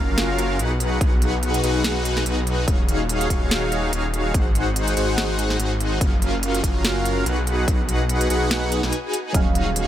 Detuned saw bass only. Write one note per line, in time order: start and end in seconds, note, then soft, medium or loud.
0.00 0.61 F#1 loud
0.59 0.99 B1 medium
1.01 1.62 B1 medium
1.64 2.24 B1 loud
2.26 2.66 B1 loud
2.68 3.28 D#1 loud
3.30 3.91 D#1 loud
3.93 4.33 D#1 medium
4.34 4.95 G#1 medium
4.97 5.58 G#1 medium
5.60 5.99 G#1 medium
6.01 6.62 F#1 loud
6.64 7.24 F#1 loud
7.26 7.66 B1 loud
7.68 8.28 B1 loud
8.30 8.81 B1 loud
8.83 8.93 B1 medium
9.34 9.87 D#1 medium